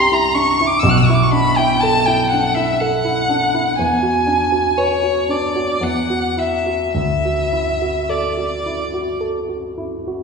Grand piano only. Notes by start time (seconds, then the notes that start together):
Already playing: C2 D4 E4 G4
0.12 E4
0.35 D4
0.60 E4
0.83 B1
1.09 E4
1.32 D4
1.58 E4
1.83 A4
2.08 E4
2.33 D4
2.56 E4
2.81 A4
3.05 E4
3.29 D4
3.54 E4
3.79 E2
4.03 F#4
4.27 D4
4.52 F#4
4.77 B4
5.04 F#4
5.29 D4
5.56 F#4
5.81 E2
6.10 F#4
6.37 E4
6.66 F#4
6.95 D2
7.25 F#4
7.53 E4
7.82 F#4
8.09 A4
8.37 F#4
8.66 E4
8.94 F#4
9.20 A4
9.49 F#4
9.78 E4
10.07 F#4